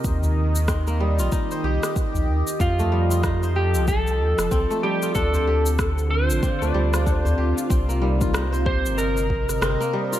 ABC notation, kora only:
X:1
M:4/4
L:1/16
Q:"Swing 16ths" 1/4=94
K:Cdor
V:1 name="Kora"
z4 C B, G, F E c G z4 z | C A, G, F E c G z4 z C A, G, F | D c G z4 z C A, G, F D c G z | C B, G, F E c G z4 z C B, G, F |]